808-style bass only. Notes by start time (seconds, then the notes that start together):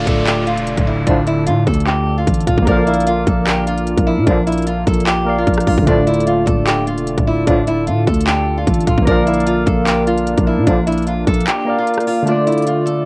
0.07 D1
0.58 E1
0.78 D1
1.07 D1
1.47 A2
1.67 D2
2.27 A1
2.47 D1
2.58 A1
2.67 A#1
3.27 A#1
3.98 A#1
4.18 A#2
4.27 A#1
4.87 A#1
5.47 A#1
5.67 A#1
5.78 A#1
5.87 D1
6.47 D1
6.98 E1
7.18 D1
7.47 D1
7.87 A2
8.07 D2
8.67 A1
8.87 D1
8.98 A1
9.07 A#1
9.67 A#1
10.38 A#1
10.58 A#2
10.67 A#1
11.27 A#1